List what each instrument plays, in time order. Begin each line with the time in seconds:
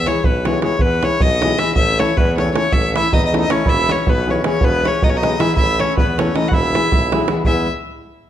0.06 nylon-string guitar E3 G#3 B3 E4 G#4, violin C#5, davul high
0.16 davul high
0.24 tuba B1, violin B4, davul low
0.45 nylon-string guitar E3 G#3 B3 E4 G#4, violin C#5, davul high
0.53 davul high
0.62 nylon-string guitar E3 G#3 B3 E4 G#4, violin C#5, davul high
0.79 tuba E2, violin B4, davul low
1.02 nylon-string guitar E3 G#3 B3 E4 G#4, violin C#5, davul high
1.11 davul high
1.20 tuba B1, violin D#5, davul low
1.42 nylon-string guitar E3 G#3 B3 E4 G#4, davul high
1.50 davul high
1.58 nylon-string guitar E3 G#3 B3 E4 G#4, violin E5, davul high
1.75 tuba A1, violin E5, davul low
1.99 nylon-string guitar E3 A3 C#4 E4 A4, violin C#5, davul high
2.08 davul high
2.17 tuba E2, violin B4, davul low
2.36 nylon-string guitar E3 A3 C#4 E4 A4, violin C#5, davul high
2.47 davul high
2.53 nylon-string guitar E3 A3 C#4 E4 A4, violin C#5, davul high
2.72 tuba A1, violin E5, davul low
2.94 nylon-string guitar E3 A3 C#4 E4 A4, melodica E4, violin E5, davul high
3.12 tuba E2, melodica D#4, violin D#5, davul low
3.24 melodica D#4, violin D#5, davul high
3.31 nylon-string guitar E3 A3 C#4 E4 A4, davul high
3.38 melodica D#4, violin D#5
3.49 nylon-string guitar E3 A3 C#4 E4 A4, melodica C#4, violin C#5, davul high
3.66 tuba E1, melodica E4, violin E5, davul low
3.88 nylon-string guitar E3 G#3 B3 E4 G#4, melodica C#4, violin C#5, davul high
3.98 davul high
4.07 tuba B1, melodica B3, violin B4, davul low
4.26 nylon-string guitar E3 G#3 B3 E4 G#4, melodica C#4
4.30 violin C#5
4.36 davul high
4.43 nylon-string guitar E3 G#3 B3 E4 G#4, melodica C#4, violin C#5, davul high
4.61 tuba E1, melodica B3, violin B4, davul low
4.84 nylon-string guitar E3 G#3 B3 E4 G#4, melodica C#4, violin C#5, davul high
4.94 davul high
5.02 tuba B1, melodica D#4, violin D#5, davul low
5.09 melodica C#4, violin C#5
5.15 melodica D#4, violin D#5
5.22 nylon-string guitar E3 G#3 B3 E4 G#4, davul high
5.31 davul high
5.39 nylon-string guitar E3 G#3 B3 E4 G#4, melodica E4, violin E5, davul high
5.55 tuba A1, melodica E4, violin E5, davul low
5.79 nylon-string guitar E3 A3 C#4 E4 A4, melodica C#4, violin C#5, davul high
5.89 davul high
5.97 tuba E2, melodica B3, violin B4, davul low
6.17 nylon-string guitar E3 A3 C#4 E4 A4, melodica C#4, violin C#5, davul high
6.27 davul high
6.34 nylon-string guitar E3 A3 C#4 E4 A4, melodica D#4, violin D#5, davul high
6.46 melodica F#4, violin F#5
6.51 tuba E1, melodica E4, violin E5, davul low
6.62 davul high
6.74 nylon-string guitar E3 G#3 B3 E4 G#4, davul high
6.92 tuba B1, davul low
7.03 davul high
7.12 nylon-string guitar E3 G#3 B3 E4 G#4, davul high
7.20 davul high
7.28 nylon-string guitar E3 G#3 B3 E4 G#4, davul high
7.45 tuba E2, nylon-string guitar G#3 B3 E4 G#4, melodica E4, violin E5, davul low